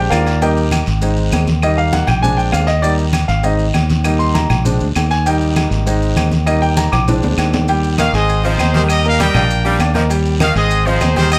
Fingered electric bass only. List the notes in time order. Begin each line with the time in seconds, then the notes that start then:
0.12 D#2
0.87 G#1
1.32 D#2
2.08 A#1
2.53 D#2
3.29 G#1
3.75 D#2
4.50 A#1
4.81 D2
4.96 D#2
5.71 G#1
6.16 D#2
6.92 A#1
7.23 D2
7.38 D#2
8.13 G#1
8.58 D#2
9.35 A#1
9.79 D#2
10.56 G#1
11.01 D#2